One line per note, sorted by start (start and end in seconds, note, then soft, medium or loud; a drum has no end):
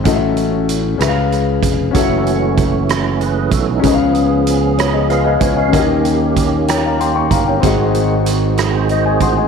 0.04 0.96 A1 loud
0.04 0.96 A2 medium
0.04 0.96 C#4 medium
0.04 1.00 F#4 medium
0.04 1.01 A4 medium
0.04 0.13 D#5 medium
0.04 kick medium
0.04 closed hi-hat medium
0.14 1.00 E5 medium
0.37 closed hi-hat soft
0.69 closed hi-hat medium
0.98 1.59 C#2 medium
0.98 1.91 C#3 medium
0.98 1.90 C#4 medium
0.98 1.94 G#4 medium
0.98 1.95 B4 medium
0.98 1.07 E5 medium
0.98 cross-stick medium
0.98 closed hi-hat medium
1.08 1.99 F5 medium
1.32 cross-stick soft
1.32 closed hi-hat soft
1.63 1.92 F1 medium
1.63 kick medium
1.63 closed hi-hat medium
1.91 3.49 F#1 medium
1.91 3.80 A3 medium
1.91 3.78 C#4 medium
1.91 3.79 F#4 medium
1.91 kick medium
1.91 closed hi-hat medium
1.95 3.81 E3 medium
1.95 3.81 C#4 soft
1.95 3.19 F#4 medium
1.95 3.81 A4 medium
1.95 3.82 E5 medium
2.27 closed hi-hat soft
2.57 kick medium
2.57 closed hi-hat medium
2.89 cross-stick medium
2.89 closed hi-hat medium
3.21 3.51 G#4 soft
3.21 3.51 B4 soft
3.21 closed hi-hat soft
3.51 3.81 B1 medium
3.51 3.66 F#4 soft
3.51 3.68 A4 medium
3.51 kick medium
3.51 closed hi-hat medium
3.67 3.98 D#4 soft
3.67 3.98 F#4 medium
3.80 4.74 C#3 medium
3.80 5.67 C#4 medium
3.80 4.76 G#4 medium
3.80 closed hi-hat medium
3.84 5.38 C#2 medium
3.84 5.70 F3 medium
3.84 5.70 B3 medium
3.84 5.70 C#4 medium
3.84 5.08 G#4 medium
3.84 4.77 B4 medium
3.84 3.92 D#5 medium
3.84 kick medium
3.94 4.82 F5 medium
4.15 closed hi-hat soft
4.47 closed hi-hat medium
4.77 4.93 G#4 soft
4.77 4.93 C#5 medium
4.77 cross-stick medium
4.77 closed hi-hat medium
4.93 5.09 G#4 soft
4.93 5.09 D#5 medium
5.10 5.26 F4 soft
5.10 5.24 G#4 medium
5.10 5.25 B4 soft
5.10 5.25 F5 medium
5.10 5.40 F5 medium
5.10 cross-stick soft
5.10 closed hi-hat soft
5.24 5.41 G#4 medium
5.24 5.40 B4 medium
5.24 5.41 D#5 medium
5.24 5.40 G#5 medium
5.40 5.73 C#2 medium
5.40 5.57 B4 soft
5.40 5.56 C#5 medium
5.40 5.56 F5 soft
5.40 kick medium
5.40 closed hi-hat medium
5.56 5.87 C#5 soft
5.56 5.75 D#5 soft
5.56 5.87 F5 medium
5.56 5.87 G#5 soft
5.69 6.64 D#3 medium
5.69 7.59 D#3 medium
5.69 7.57 C#4 medium
5.69 7.59 C#4 medium
5.69 5.79 F#4 soft
5.69 5.79 F#4 medium
5.73 7.27 D#2 medium
5.73 7.59 A#3 medium
5.73 7.59 A#4 medium
5.73 6.68 D#5 medium
5.73 kick medium
5.73 closed hi-hat medium
5.78 7.61 G4 medium
5.78 7.62 G4 medium
6.05 closed hi-hat soft
6.36 kick medium
6.36 closed hi-hat medium
6.68 6.84 C#5 soft
6.68 6.83 G5 medium
6.68 cross-stick medium
6.68 closed hi-hat medium
6.85 6.99 F5 soft
6.85 6.99 A#5 soft
7.00 7.14 G5 soft
7.00 7.15 C6 medium
7.00 closed hi-hat soft
7.16 7.31 G5 medium
7.16 7.31 C#6 medium
7.31 7.60 G1 medium
7.31 7.46 F5 soft
7.31 7.46 A#5 medium
7.31 kick medium
7.31 closed hi-hat medium
7.47 7.78 C#5 soft
7.47 7.77 G5 soft
7.60 9.17 G#1 medium
7.60 8.54 G#2 medium
7.60 9.48 D#3 medium
7.60 9.48 G#3 medium
7.60 7.69 A3 soft
7.60 9.47 C4 medium
7.60 9.48 F#4 medium
7.60 kick medium
7.60 closed hi-hat medium
7.65 9.48 G#4 medium
7.65 8.89 D#5 medium
7.69 9.48 C4 medium
7.94 closed hi-hat soft
8.26 closed hi-hat medium
8.57 8.73 G#4 soft
8.57 cross-stick medium
8.57 closed hi-hat medium
8.73 8.89 G#4 soft
8.73 8.88 C5 medium
8.89 9.05 C5 soft
8.89 9.05 D#5 medium
8.89 closed hi-hat soft
9.06 9.36 G#4 soft
9.06 9.36 C5 medium
9.06 9.21 D#5 soft
9.06 9.21 G#5 medium
9.20 9.48 A1 medium
9.20 9.37 F#5 soft
9.20 9.48 C6 medium
9.20 kick medium
9.20 closed hi-hat medium
9.37 9.48 D#5 soft
9.37 9.48 G#5 soft